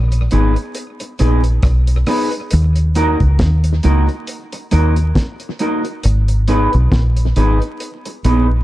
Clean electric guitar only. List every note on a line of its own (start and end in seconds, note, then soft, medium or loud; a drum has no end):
0.32 0.53 B3 medium
0.32 0.53 D#4 medium
0.32 0.53 G#4 medium
0.32 0.54 B4 medium
1.01 muted clean electric guitar stroke soft
1.19 1.41 B3 medium
1.19 1.41 D#4 medium
1.19 1.41 G#4 medium
1.19 1.42 B4 medium
2.07 2.29 B3 medium
2.07 2.29 D#4 medium
2.07 2.29 G#4 medium
2.07 2.30 B4 medium
2.96 3.17 A#3 medium
2.96 3.17 D#4 medium
2.96 3.17 F#4 loud
2.96 3.18 A#4 medium
3.84 4.05 A#3 loud
3.84 4.05 D#4 medium
3.84 4.06 F#4 medium
3.84 4.06 A#4 medium
4.53 muted clean electric guitar stroke soft
4.71 4.93 A#3 medium
4.71 4.93 D#4 medium
4.71 4.93 F#4 medium
4.71 4.94 A#4 medium
5.60 5.81 A#3 medium
5.60 5.82 D#4 medium
5.60 5.82 F#4 medium
5.60 5.82 A#4 medium
6.48 6.69 B3 medium
6.48 6.70 D#4 medium
6.48 6.70 G#4 medium
6.48 6.70 B4 loud
7.36 7.58 B3 medium
7.36 7.58 D#4 medium
7.36 7.58 G#4 medium
7.36 7.58 B4 loud
8.06 muted clean electric guitar stroke soft
8.25 8.46 B3 medium
8.25 8.46 D#4 medium
8.25 8.46 G#4 medium
8.25 8.46 B4 loud